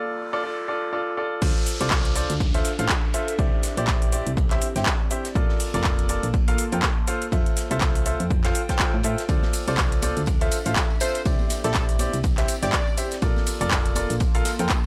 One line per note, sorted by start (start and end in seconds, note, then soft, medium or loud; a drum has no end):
0.00 0.30 F4 medium
0.00 0.30 A4 medium
0.00 0.30 D5 medium
0.00 noise sweep medium
0.33 0.42 F4 medium
0.33 0.42 A4 medium
0.33 0.42 D5 loud
0.43 0.66 F4 medium
0.43 0.66 A4 medium
0.43 0.66 D5 medium
0.68 0.91 F4 medium
0.68 0.91 A4 medium
0.68 0.91 D5 medium
0.93 1.16 F4 medium
0.93 1.16 A4 medium
0.93 1.16 D5 medium
1.17 1.40 F4 medium
1.17 1.40 A4 medium
1.17 1.40 D5 medium
1.42 1.54 D2 loud
1.42 4.18 D4 medium
1.42 1.77 F4 medium
1.42 1.77 A4 medium
1.42 1.77 C5 medium
1.42 1.77 D5 medium
1.42 kick loud
1.42 crash loud
1.42 ride medium
1.42 downlifter medium
1.42 shaker soft
1.53 4.18 A4 medium
1.53 snare soft
1.66 open hi-hat medium
1.66 open hi-hat loud
1.66 shaker medium
1.81 2.26 C2 loud
1.81 2.13 F4 medium
1.81 2.13 A4 medium
1.81 2.13 C5 medium
1.81 2.13 D5 loud
1.81 closed hi-hat medium
1.81 shaker soft
1.88 4.18 E5 medium
1.88 kick loud
1.88 snare loud
1.88 clap loud
1.88 ride medium
1.88 shaker soft
2.05 closed hi-hat medium
2.15 2.32 F4 medium
2.15 2.32 A4 medium
2.15 2.32 C5 medium
2.15 2.32 D5 medium
2.15 open hi-hat loud
2.15 ride medium
2.15 shaker medium
2.30 2.62 D2 medium
2.30 closed hi-hat medium
2.30 shaker soft
2.40 kick loud
2.40 ride medium
2.40 shaker soft
2.54 2.68 F4 medium
2.54 2.68 A4 medium
2.54 2.68 C5 medium
2.54 2.68 E5 loud
2.54 open hi-hat medium
2.54 ride soft
2.65 open hi-hat loud
2.65 ride medium
2.65 shaker medium
2.79 2.88 A1 loud
2.79 2.93 F4 medium
2.79 2.93 A4 medium
2.79 2.93 C5 medium
2.79 2.93 F5 medium
2.79 closed hi-hat medium
2.79 ride soft
2.79 shaker soft
2.89 kick loud
2.89 snare loud
2.89 clap loud
2.89 ride medium
2.89 shaker soft
3.14 3.31 F4 medium
3.14 3.31 A4 medium
3.14 3.31 C5 medium
3.14 3.31 E5 medium
3.14 open hi-hat loud
3.14 ride medium
3.14 shaker medium
3.28 closed hi-hat medium
3.28 ride soft
3.28 shaker soft
3.39 3.50 C2 loud
3.39 6.05 C4 medium
3.39 3.74 E4 medium
3.39 3.74 G4 medium
3.39 3.74 C5 medium
3.39 3.74 D5 medium
3.39 kick loud
3.39 ride medium
3.39 shaker soft
3.63 snare medium
3.63 open hi-hat loud
3.63 ride medium
3.63 shaker medium
3.69 6.05 G4 medium
3.77 4.23 A#1 loud
3.77 4.10 E4 medium
3.77 4.10 G4 medium
3.77 4.10 C5 medium
3.77 4.10 D5 loud
3.77 closed hi-hat medium
3.77 shaker soft
3.87 kick loud
3.87 snare loud
3.87 clap loud
3.87 ride medium
3.87 shaker soft
4.02 open hi-hat medium
4.12 4.29 E4 medium
4.12 4.29 G4 medium
4.12 4.29 C5 medium
4.12 4.29 D5 medium
4.12 open hi-hat loud
4.12 ride medium
4.12 shaker medium
4.27 4.59 C2 medium
4.27 6.00 D5 medium
4.27 closed hi-hat medium
4.27 shaker soft
4.37 kick loud
4.37 ride medium
4.37 shaker soft
4.51 4.65 E4 loud
4.51 4.65 G4 medium
4.51 4.65 C5 medium
4.51 4.65 E5 loud
4.51 snare soft
4.51 clap soft
4.51 closed hi-hat medium
4.61 open hi-hat loud
4.61 ride medium
4.61 shaker medium
4.76 4.84 G1 loud
4.76 4.90 E4 medium
4.76 4.90 G4 medium
4.76 4.90 C5 medium
4.76 4.90 G5 medium
4.76 snare soft
4.76 closed hi-hat medium
4.76 shaker soft
4.86 kick loud
4.86 snare loud
4.86 clap loud
4.86 ride medium
4.86 shaker soft
5.11 5.27 E4 medium
5.11 5.27 G4 medium
5.11 5.27 C5 medium
5.11 5.28 E5 medium
5.11 open hi-hat loud
5.11 ride medium
5.11 shaker medium
5.25 snare medium
5.25 closed hi-hat medium
5.25 shaker soft
5.35 5.47 A#1 loud
5.35 7.07 A#3 medium
5.35 5.71 F4 medium
5.35 5.71 A4 medium
5.35 5.71 A#4 medium
5.35 5.71 D5 medium
5.35 kick loud
5.35 ride medium
5.35 shaker soft
5.49 snare soft
5.60 7.97 A5 medium
5.60 open hi-hat loud
5.60 open hi-hat medium
5.60 shaker medium
5.74 6.20 F1 loud
5.74 6.07 F4 medium
5.74 6.07 A4 medium
5.74 6.07 A#4 medium
5.74 6.07 D5 loud
5.74 closed hi-hat medium
5.74 shaker soft
5.84 kick loud
5.84 snare loud
5.84 clap loud
5.84 ride medium
5.84 shaker soft
5.99 closed hi-hat medium
6.03 7.97 C6 medium
6.09 6.26 F4 medium
6.09 6.26 A4 medium
6.09 6.26 A#4 medium
6.09 6.26 D5 medium
6.09 open hi-hat loud
6.09 ride medium
6.09 shaker medium
6.23 6.56 A#1 medium
6.23 closed hi-hat medium
6.23 shaker soft
6.34 kick loud
6.34 ride medium
6.34 shaker soft
6.48 6.62 F4 loud
6.48 6.62 A4 medium
6.48 6.62 A#4 medium
6.48 6.62 F5 loud
6.48 open hi-hat medium
6.48 ride soft
6.58 open hi-hat loud
6.58 ride medium
6.58 shaker medium
6.72 6.81 F2 loud
6.72 6.86 F4 medium
6.72 6.86 A4 medium
6.72 6.86 A#4 medium
6.72 6.86 G5 medium
6.72 closed hi-hat medium
6.72 ride soft
6.72 shaker soft
6.82 kick loud
6.82 snare loud
6.82 clap loud
6.82 ride medium
6.82 shaker soft
7.07 10.08 F4 medium
7.07 7.24 F4 medium
7.07 7.24 A4 medium
7.07 7.24 C5 medium
7.07 7.24 F5 medium
7.07 open hi-hat loud
7.07 ride medium
7.07 shaker medium
7.22 closed hi-hat medium
7.22 ride soft
7.22 shaker soft
7.32 7.44 F2 loud
7.32 7.67 F4 medium
7.32 7.67 A4 medium
7.32 7.67 C5 medium
7.32 10.08 C5 medium
7.32 7.67 E5 medium
7.32 kick loud
7.32 ride loud
7.32 shaker soft
7.46 closed hi-hat soft
7.56 10.08 G5 medium
7.56 snare medium
7.56 open hi-hat loud
7.56 ride medium
7.56 shaker medium
7.71 8.16 C2 loud
7.71 8.03 F4 medium
7.71 8.03 A4 medium
7.71 8.03 C5 medium
7.71 8.03 E5 loud
7.71 closed hi-hat medium
7.71 shaker soft
7.81 kick loud
7.81 snare loud
7.81 clap loud
7.81 ride medium
7.81 shaker soft
7.95 open hi-hat medium
8.06 8.23 F4 medium
8.06 8.23 A4 medium
8.06 8.23 C5 medium
8.06 8.23 E5 medium
8.06 open hi-hat loud
8.06 ride medium
8.06 shaker medium
8.20 8.52 F2 medium
8.20 closed hi-hat medium
8.20 shaker soft
8.30 kick loud
8.30 ride medium
8.30 shaker soft
8.44 8.59 F4 loud
8.44 8.59 A4 medium
8.44 8.59 C5 medium
8.44 8.59 F5 loud
8.44 snare medium
8.44 clap soft
8.44 closed hi-hat medium
8.55 open hi-hat loud
8.55 ride medium
8.55 shaker medium
8.69 8.94 F4 loud
8.69 8.94 A4 medium
8.69 8.94 C5 medium
8.69 8.94 G5 loud
8.69 kick medium
8.69 snare soft
8.69 closed hi-hat medium
8.69 shaker soft
8.79 kick loud
8.79 snare loud
8.79 clap loud
8.79 ride medium
8.79 shaker soft
8.94 9.03 A2 medium
9.03 9.16 A2 medium
9.03 9.21 F4 medium
9.03 9.21 A4 medium
9.03 9.21 C5 medium
9.03 9.21 E5 medium
9.03 open hi-hat loud
9.03 ride medium
9.03 shaker medium
9.18 snare medium
9.18 closed hi-hat medium
9.18 shaker soft
9.29 9.41 D2 loud
9.29 12.05 D4 medium
9.29 9.64 F4 medium
9.29 9.64 A4 medium
9.29 9.64 C5 medium
9.29 9.64 D5 medium
9.29 kick loud
9.29 ride medium
9.29 ride loud
9.29 tambourine soft
9.29 shaker soft
9.42 snare soft
9.42 tambourine soft
9.42 high conga medium
9.53 open hi-hat medium
9.53 open hi-hat loud
9.53 ride medium
9.53 tambourine medium
9.53 shaker medium
9.63 11.93 A4 medium
9.68 10.13 C2 loud
9.68 10.00 F4 medium
9.68 10.00 A4 medium
9.68 10.00 C5 medium
9.68 10.00 D5 loud
9.68 closed hi-hat medium
9.68 tambourine soft
9.68 shaker soft
9.73 12.05 E5 medium
9.78 kick loud
9.78 snare loud
9.78 clap loud
9.78 ride medium
9.78 tambourine medium
9.78 shaker soft
9.92 closed hi-hat medium
9.92 tambourine soft
10.02 10.19 F4 medium
10.02 10.19 A4 medium
10.02 10.19 C5 medium
10.02 10.19 D5 medium
10.02 open hi-hat loud
10.02 ride medium
10.02 tambourine loud
10.02 high conga medium
10.02 shaker medium
10.17 10.49 D2 medium
10.17 closed hi-hat medium
10.17 tambourine soft
10.17 shaker soft
10.26 kick loud
10.26 ride medium
10.26 tambourine medium
10.26 shaker soft
10.41 10.55 F4 loud
10.41 10.55 A4 medium
10.41 10.55 C5 medium
10.41 10.55 E5 loud
10.41 open hi-hat medium
10.41 ride soft
10.41 tambourine soft
10.51 open hi-hat loud
10.51 ride medium
10.51 tambourine medium
10.51 shaker medium
10.65 10.75 A1 loud
10.65 10.80 F4 medium
10.65 10.80 A4 medium
10.65 10.80 C5 medium
10.65 10.80 F5 medium
10.65 closed hi-hat medium
10.65 ride soft
10.65 tambourine soft
10.65 shaker soft
10.76 kick loud
10.76 snare loud
10.76 clap loud
10.76 ride medium
10.76 tambourine medium
10.76 shaker soft
10.90 tambourine soft
11.00 11.18 F4 medium
11.00 11.18 A4 medium
11.00 11.22 C5 medium
11.00 11.18 C5 medium
11.00 11.18 E5 medium
11.00 open hi-hat loud
11.00 ride medium
11.00 tambourine medium
11.00 shaker medium
11.15 closed hi-hat medium
11.15 ride soft
11.15 tambourine soft
11.15 shaker soft
11.25 11.37 C2 loud
11.25 13.92 C4 medium
11.25 11.61 E4 medium
11.25 11.61 G4 medium
11.25 11.61 C5 medium
11.25 11.61 D5 medium
11.25 kick loud
11.25 ride medium
11.25 tambourine medium
11.25 shaker soft
11.39 tambourine soft
11.39 high conga medium
11.47 13.92 G4 medium
11.47 snare medium
11.47 open hi-hat loud
11.47 ride medium
11.47 tambourine medium
11.47 shaker medium
11.64 12.10 A#1 loud
11.64 11.97 E4 loud
11.64 11.97 G4 medium
11.64 11.84 A4 loud
11.64 11.97 C5 medium
11.64 11.97 D5 loud
11.64 closed hi-hat medium
11.64 tambourine soft
11.64 shaker soft
11.71 13.92 D5 medium
11.71 kick loud
11.71 snare loud
11.71 clap loud
11.71 ride loud
11.71 ride medium
11.71 tambourine soft
11.71 shaker soft
11.89 open hi-hat medium
11.89 tambourine soft
11.99 12.16 E4 medium
11.99 12.16 G4 medium
11.99 12.16 C5 medium
11.99 12.16 D5 medium
11.99 open hi-hat loud
11.99 ride medium
11.99 tambourine medium
11.99 high conga medium
11.99 shaker medium
12.13 12.46 C2 medium
12.13 closed hi-hat medium
12.13 tambourine soft
12.13 shaker soft
12.23 kick loud
12.23 ride medium
12.23 tambourine soft
12.23 shaker soft
12.38 12.52 E4 loud
12.38 12.52 G4 medium
12.38 12.52 C5 medium
12.38 12.52 E5 loud
12.38 snare soft
12.38 clap soft
12.38 closed hi-hat medium
12.38 tambourine soft
12.48 open hi-hat loud
12.48 ride medium
12.48 tambourine medium
12.48 shaker medium
12.63 12.71 G1 loud
12.63 12.77 E4 medium
12.63 12.77 G4 medium
12.63 12.77 C5 medium
12.63 12.98 D5 medium
12.63 12.77 G5 medium
12.63 snare soft
12.63 closed hi-hat medium
12.63 tambourine soft
12.63 shaker soft
12.72 kick loud
12.72 snare loud
12.72 clap loud
12.72 ride medium
12.72 tambourine soft
12.72 shaker soft
12.87 tambourine soft
12.97 13.14 E4 medium
12.97 13.14 G4 medium
12.97 13.14 C5 medium
12.97 13.14 E5 medium
12.97 open hi-hat loud
12.97 ride medium
12.97 tambourine medium
12.97 shaker medium
13.11 snare medium
13.11 closed hi-hat medium
13.11 tambourine soft
13.11 shaker soft
13.22 13.34 A#1 loud
13.22 14.86 A#3 medium
13.22 13.58 F4 medium
13.22 13.58 A4 medium
13.22 13.58 A#4 medium
13.22 13.58 D5 medium
13.22 kick loud
13.22 ride medium
13.22 tambourine soft
13.22 shaker soft
13.36 snare soft
13.36 tambourine soft
13.36 high conga medium
13.46 open hi-hat medium
13.46 open hi-hat loud
13.46 ride medium
13.46 tambourine medium
13.46 shaker medium
13.53 14.86 A5 medium
13.61 14.06 F1 loud
13.61 13.93 F4 loud
13.61 13.93 A4 medium
13.61 13.93 A#4 medium
13.61 13.93 D5 loud
13.61 closed hi-hat medium
13.61 tambourine soft
13.61 shaker soft
13.65 14.86 C6 medium
13.71 kick loud
13.71 snare loud
13.71 clap loud
13.71 ride medium
13.71 tambourine soft
13.71 shaker soft
13.85 closed hi-hat medium
13.85 tambourine soft
13.95 14.13 F4 medium
13.95 14.13 A4 medium
13.95 14.13 A#4 medium
13.95 14.13 D5 medium
13.95 open hi-hat loud
13.95 ride medium
13.95 tambourine medium
13.95 high conga medium
13.95 shaker medium
14.10 14.42 A#1 medium
14.10 closed hi-hat medium
14.10 tambourine soft
14.10 shaker soft
14.20 kick loud
14.20 ride loud
14.20 ride medium
14.20 tambourine soft
14.20 shaker soft
14.34 14.49 F4 loud
14.34 14.49 A4 medium
14.34 14.49 A#4 medium
14.34 14.49 F5 loud
14.34 open hi-hat medium
14.34 ride soft
14.34 tambourine soft
14.45 snare loud
14.45 open hi-hat loud
14.45 ride medium
14.45 tambourine medium
14.45 shaker medium
14.59 14.68 F2 loud
14.59 14.73 F4 medium
14.59 14.73 A4 medium
14.59 14.73 A#4 medium
14.59 14.73 G5 medium
14.59 closed hi-hat medium
14.59 tambourine soft
14.59 shaker soft
14.69 kick loud
14.69 clap loud
14.69 ride medium
14.69 tambourine medium
14.69 shaker soft